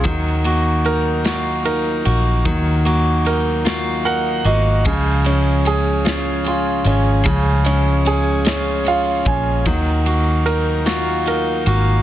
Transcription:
<<
  \new Staff \with { instrumentName = "Grand piano" } { \time 6/8 \key ees \dorian \tempo 4. = 50 ees8 ges'8 bes'8 ges'8 bes'8 ges'8 | ees8 ges'8 bes'8 ges'8 <bes' ges''>8 <ges' ees''>8 | des8 des'8 aes'8 des'8 f'8 des'8 | des8 des'8 aes'8 des'8 <f' f''>8 <des' aes''>8 |
ees8 ges'8 bes'8 ges'8 bes'8 ges'8 | }
  \new Staff \with { instrumentName = "Steel-string acoustic guitar" } { \time 6/8 \key ees \dorian ges8 bes8 ees'8 f'8 ees'8 bes8 | ges8 bes8 ees'8 f'8 ees'8 bes8 | f8 aes8 des'8 f'8 des'8 aes8 | f8 aes8 des'8 f'8 des'8 aes8 |
ges8 bes8 ees'8 f'8 ees'8 bes8 | }
  \new Staff \with { instrumentName = "Fingered electric bass" } { \clef bass \time 6/8 \key ees \dorian ees,2~ ees,8 bes,,8 | ees,2~ ees,8 aes,,8 | des,2~ des,8 aes,,8 | des,2~ des,8 bes,,8 |
ees,2~ ees,8 aes,,8 | }
  \new DrumStaff \with { instrumentName = "Drums" } \drummode { \time 6/8 <bd cymr>8 cymr8 cymr8 <cymr sn>8 cymr8 cymr8 | <bd cymr>8 cymr8 cymr8 <cymr sn>8 cymr8 cymr8 | <bd cymr>8 cymr8 cymr8 <cymr sn>8 cymr8 cymr8 | <bd cymr>8 cymr8 cymr8 <cymr sn>8 cymr8 <bd cymr>8 |
<bd cymr>8 cymr8 cymr8 <cymr sn>8 cymr8 cymr8 | }
>>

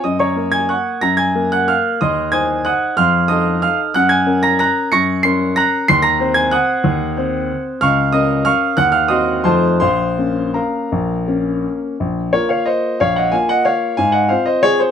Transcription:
\new Staff \with { instrumentName = "Grand piano" } { \time 3/4 \key bes \minor \tempo 4 = 182 << { <ees'' ees'''>8 <des'' bes'' des'''>4 <aes'' aes'''>8 <ges'' des''' ges'''>4 | <bes'' bes'''>8 <aes'' aes'''>4 <ges'' ges'''>8 <f'' f'''>4 | <ees'' c''' ees'''>4 <aes'' ees''' aes'''>4 <ges'' ees''' ges'''>4 | <f'' c''' f'''>4 <ees'' c''' ees'''>4 <f'' f'''>8 r8 |
<ges'' ges'''>8 <aes'' aes'''>4 <bes'' bes'''>8 <bes'' ges''' bes'''>4 | <des''' bes''' des''''>4 <c''' c''''>4 <bes'' ges''' bes'''>4 | <c''' c''''>8 <bes'' bes'''>4 <aes'' aes'''>8 <ges'' ees''' ges'''>4~ | <ges'' ees''' ges'''>2~ <ges'' ees''' ges'''>8 r8 |
<f'' des''' f'''>4 <ees'' ees'''>4 <f'' des''' f'''>4 | <ges'' ges'''>8 <f'' f'''>8 <ees'' c''' ees'''>4 <c'' a'' c'''>4 | <c'' f'' c'''>2 <bes' f'' bes''>4~ | <bes' f'' bes''>2~ <bes' f'' bes''>8 r8 |
r4 <bes' des''>8 <des'' f''>8 <c'' ees''>4 | <des'' f''>8 <ees'' ges''>8 <f'' aes''>8 <ees'' ges''>8 <des'' f''>4 | <f'' aes''>8 <ees'' ges''>8 <c'' f''>8 <c'' ees''>8 <aes' des''>8 <aes' c''>8 | } \\ { ges,4 <bes bes'>2 | ges,4 <bes bes'>2 | ees,4 <ees' c''>2 | f,4 <ees' a'>2 |
ges,4 <des' bes'>2 | ges,4 <des' bes'>2 | ees,4 <c' c''>2 | ees,4 <c' c''>2 |
des,4 <des' bes'>2 | ees,4 <c' ges'>4 <f, f a ees'>4 | bes,,4 <bes des'>2 | bes,,4 <bes des'>2 |
bes,,4 <bes f'>2 | bes,,4 <bes f'>2 | aes,4 <c' f'>2 | } >> }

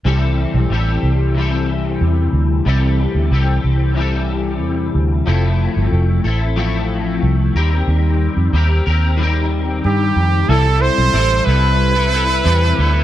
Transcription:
<<
  \new Staff \with { instrumentName = "Trumpet" } { \time 4/4 \key c \major \tempo 4 = 92 r1 | r1 | r1 | r2. g'4 |
a'8 c''4 b'2~ b'8 | }
  \new Staff \with { instrumentName = "Reed electric piano" } { \time 4/4 \key c \major r1 | r1 | r1 | r1 |
<g c' e' a'>1 | }
  \new Staff \with { instrumentName = "Clean electric guitar" } { \time 4/4 \key c \major <c e g c' g' a'>4 <g c' g' a'>4 <c e g c' g' a'>2 | <c e g c' g' a'>4 <g c' g' a'>4 <c e g c' g' a'>2 | <f a c' e' a'>4. <c' e' a'>8 <f a c' e' a'>4. <ees g c' g' bes'>8~ | <ees g c' g' bes'>4 <g c' g' bes'>8 <c' g' bes'>8 <ees g c' g' bes'>2 |
<c e g c' e' a'>16 <g c' e' a'>8. <c e g c' e' a'>8 <g c' e' a'>8. <g c' e' a'>16 <g c' e' a'>8 <c e g c' e' a'>8 <g c' e' a'>16 <g c' e' a'>16 | }
  \new Staff \with { instrumentName = "Fingered electric bass" } { \clef bass \time 4/4 \key c \major c,8. b,,16 a,,8 c,4. e,8 d,8 | c,8. d,16 c,8 c,4. e,8 d,8 | f,,8. g,,16 f,,8 a,,4. c,8 ees,8 | ees,8. f,16 ees,8 ees,4. g,8 f,8 |
c,8. b,,16 a,,8 c,4. e,8 d,8 | }
>>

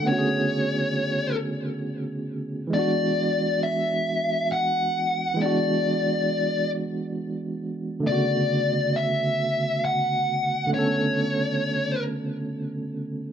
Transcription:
<<
  \new Staff \with { instrumentName = "Lead electric guitar" } { \time 6/8 \key b \dorian \tempo 4. = 45 cis''4. r4. | d''4 e''4 fis''4 | d''4. r4. | d''4 e''4 fis''4 |
cis''4. r4. | }
  \new Staff \with { instrumentName = "Tine electric piano" } { \time 6/8 \key b \dorian <d a b cis' fis' gis'>2. | <e gis b d' fis'>2. | <e gis b d' fis'>2. | <cis d a b fis'>2. |
<d a b cis' a'>2. | }
>>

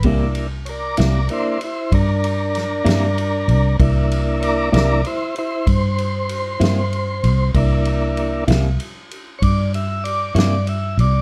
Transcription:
<<
  \new Staff \with { instrumentName = "Tonewheel organ" } { \time 12/8 \key c \major \tempo 4. = 64 << { r4 <bes' cis'' d''>8 <bes' d''>8 c''8 <e' c''>8 <d' bes'>2. | r4 <bes' cis'' d''>8 <bes' d''>8 <e' c''>8 <e' c''>8 c''2. | r2. <cis'' d''>8 e''8 d''8 <cis'' d''>8 e''8 d''8 | } \\ { <bes d' e'>8 r4. <bes d' e'>8 r2. r8 | <bes d' e'>4. <bes d' e'>8 r1 | <bes d' e'>4. r1 r8 | } >> }
  \new Staff \with { instrumentName = "Clean electric guitar" } { \clef bass \time 12/8 \key c \major <c g bes e'>8 r4 <c g bes e'>8 r2 r8 <c g bes e'>8 r4 | r4. <c g bes e'>8 r2 r8 <c g bes e'>8 r4 | r4. <c g bes e'>8 r2 r8 <c g bes e'>8 r4 | }
  \new Staff \with { instrumentName = "Fingered electric bass" } { \clef bass \time 12/8 \key c \major c,4. c,8 r4 g,4. g,4 c,8 | c,4. c,8 r4 g,4. g,4 c,8 | c,4. c,8 r4 g,4. g,4 c,8 | }
  \new DrumStaff \with { instrumentName = "Drums" } \drummode { \time 12/8 <bd cymr>8 cymr8 cymr8 <cymr sn>8 cymr8 cymr8 <bd cymr>8 cymr8 <cymr sn>8 <cymr sn>8 cymr8 cymr8 | <bd cymr>8 cymr8 cymr8 <cymr sn>8 cymr8 cymr8 <bd cymr>8 cymr8 cymr8 <cymr sn>8 cymr8 cymr8 | <bd cymr>8 cymr8 cymr8 <cymr sn>8 cymr8 cymr8 <bd cymr>8 cymr8 cymr8 <cymr sn>8 cymr8 cymr8 | }
>>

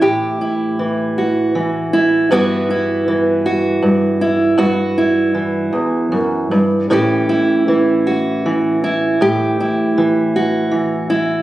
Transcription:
\new Staff \with { instrumentName = "Steel-string acoustic guitar" } { \time 6/8 \key a \mixolydian \tempo 4. = 53 << { g'8 e'4 fis'4 e'8 | <e b e' fis'>8 e'4 fis'4 e'8 | fis'8 e'2~ e'8 | <e cis' e' g'>8 e'4 fis'4 e'8 |
g'8 e'4 fis'4 e'8 | } \\ { <a, e>4 e4 e4 | g,4 e4 g,4 | g,4 e8 e,8 fis,8 g,8 | a,4 e4 e4 |
a,4 e4 e4 | } >> }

